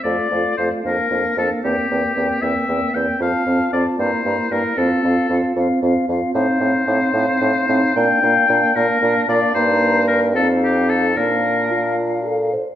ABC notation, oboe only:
X:1
M:6/8
L:1/8
Q:3/8=76
K:F
V:1 name="Oboe"
d2 c B2 A | G3 e2 g | f2 d c2 B | A3 z3 |
[K:Bb] c6 | g3 B2 d | c2 B A G A | B3 z3 |]